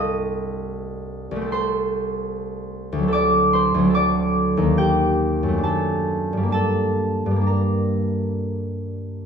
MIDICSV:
0, 0, Header, 1, 2, 480
1, 0, Start_track
1, 0, Key_signature, -2, "minor"
1, 0, Tempo, 817439
1, 1833, Time_signature, 4, 2, 24, 8
1, 2803, Tempo, 887574
1, 3763, Tempo, 925926
1, 5168, End_track
2, 0, Start_track
2, 0, Title_t, "Harp"
2, 0, Program_c, 0, 46
2, 0, Note_on_c, 0, 36, 55
2, 0, Note_on_c, 0, 57, 41
2, 0, Note_on_c, 0, 60, 47
2, 0, Note_on_c, 0, 69, 45
2, 0, Note_on_c, 0, 72, 53
2, 0, Note_on_c, 0, 75, 63
2, 0, Note_on_c, 0, 87, 89
2, 0, Note_on_c, 0, 89, 74
2, 96, Note_off_c, 0, 89, 0
2, 672, Note_off_c, 0, 72, 0
2, 763, Note_off_c, 0, 36, 0
2, 770, Note_on_c, 0, 36, 58
2, 792, Note_off_c, 0, 57, 0
2, 799, Note_on_c, 0, 57, 50
2, 824, Note_off_c, 0, 60, 0
2, 831, Note_on_c, 0, 60, 51
2, 853, Note_off_c, 0, 69, 0
2, 860, Note_on_c, 0, 69, 45
2, 893, Note_on_c, 0, 84, 88
2, 898, Note_on_c, 0, 72, 64
2, 1717, Note_on_c, 0, 38, 58
2, 1752, Note_on_c, 0, 54, 51
2, 1771, Note_off_c, 0, 60, 0
2, 1778, Note_on_c, 0, 60, 52
2, 1793, Note_off_c, 0, 36, 0
2, 1802, Note_off_c, 0, 69, 0
2, 1809, Note_on_c, 0, 69, 57
2, 1836, Note_on_c, 0, 86, 97
2, 1846, Note_on_c, 0, 74, 77
2, 1853, Note_off_c, 0, 87, 0
2, 1858, Note_off_c, 0, 75, 0
2, 2067, Note_off_c, 0, 84, 0
2, 2074, Note_on_c, 0, 84, 93
2, 2076, Note_off_c, 0, 72, 0
2, 2083, Note_on_c, 0, 72, 70
2, 2191, Note_off_c, 0, 38, 0
2, 2198, Note_on_c, 0, 38, 63
2, 2218, Note_off_c, 0, 54, 0
2, 2226, Note_on_c, 0, 54, 51
2, 2250, Note_off_c, 0, 60, 0
2, 2257, Note_on_c, 0, 60, 50
2, 2283, Note_off_c, 0, 69, 0
2, 2290, Note_on_c, 0, 69, 47
2, 2311, Note_off_c, 0, 86, 0
2, 2318, Note_off_c, 0, 74, 0
2, 2318, Note_on_c, 0, 86, 94
2, 2325, Note_on_c, 0, 74, 73
2, 2685, Note_on_c, 0, 39, 58
2, 2711, Note_on_c, 0, 58, 44
2, 2762, Note_off_c, 0, 38, 0
2, 2776, Note_off_c, 0, 54, 0
2, 2776, Note_off_c, 0, 57, 0
2, 2791, Note_off_c, 0, 60, 0
2, 2805, Note_on_c, 0, 79, 85
2, 2807, Note_off_c, 0, 69, 0
2, 2812, Note_on_c, 0, 67, 60
2, 2819, Note_off_c, 0, 84, 0
2, 2820, Note_off_c, 0, 86, 0
2, 2823, Note_off_c, 0, 72, 0
2, 2824, Note_off_c, 0, 74, 0
2, 3157, Note_on_c, 0, 42, 50
2, 3186, Note_on_c, 0, 57, 44
2, 3211, Note_on_c, 0, 60, 41
2, 3236, Note_off_c, 0, 39, 0
2, 3240, Note_on_c, 0, 62, 46
2, 3248, Note_off_c, 0, 58, 0
2, 3269, Note_on_c, 0, 81, 77
2, 3274, Note_on_c, 0, 69, 53
2, 3292, Note_off_c, 0, 79, 0
2, 3295, Note_off_c, 0, 67, 0
2, 3644, Note_on_c, 0, 43, 45
2, 3667, Note_on_c, 0, 55, 42
2, 3699, Note_on_c, 0, 58, 40
2, 3720, Note_off_c, 0, 62, 0
2, 3725, Note_off_c, 0, 42, 0
2, 3727, Note_on_c, 0, 62, 42
2, 3739, Note_off_c, 0, 57, 0
2, 3742, Note_off_c, 0, 81, 0
2, 3749, Note_on_c, 0, 81, 76
2, 3751, Note_off_c, 0, 69, 0
2, 3752, Note_off_c, 0, 60, 0
2, 3758, Note_on_c, 0, 69, 62
2, 4125, Note_off_c, 0, 43, 0
2, 4132, Note_on_c, 0, 43, 47
2, 4150, Note_off_c, 0, 55, 0
2, 4156, Note_on_c, 0, 55, 40
2, 4178, Note_off_c, 0, 58, 0
2, 4184, Note_on_c, 0, 58, 38
2, 4203, Note_off_c, 0, 62, 0
2, 4209, Note_on_c, 0, 62, 40
2, 4238, Note_on_c, 0, 82, 56
2, 4245, Note_on_c, 0, 70, 45
2, 5168, Note_off_c, 0, 43, 0
2, 5168, Note_off_c, 0, 55, 0
2, 5168, Note_off_c, 0, 58, 0
2, 5168, Note_off_c, 0, 62, 0
2, 5168, Note_off_c, 0, 69, 0
2, 5168, Note_off_c, 0, 70, 0
2, 5168, Note_off_c, 0, 81, 0
2, 5168, Note_off_c, 0, 82, 0
2, 5168, End_track
0, 0, End_of_file